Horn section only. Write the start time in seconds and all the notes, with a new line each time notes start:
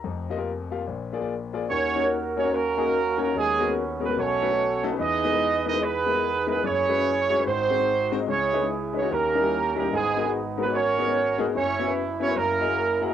1.70 C#4 F#4 A#4 C#5
2.37 C#4 C#5
2.53 A#3 C#4 F#4 A#4
3.21 A#3 A#4
3.36 G#3 B3 C#4 G#4
4.03 B3 B4
4.18 C#4 F#4 A4 C#5
5.00 D#4 G#4 B4 D#5
5.66 D#4 D#5
5.81 B3 D#4 G#4 B4
6.49 B3 B4
6.64 C#4 E4 G#4 C#5
7.46 C4 D#4 F#4 C5
8.28 C#4 E4 G#4 C#5
8.95 C#4 C#5
9.10 A#3 C#4 G4 A#4
9.77 A#3 A#4
9.92 G#3 B3 D#4 G#4
10.59 B3 B4
10.74 C#4 F#4 A#4 C#5
11.55 C#4 E4 C#5
12.22 C#4 C#5
12.36 A#3 C#4 E4 A#4
13.03 A#3 A#4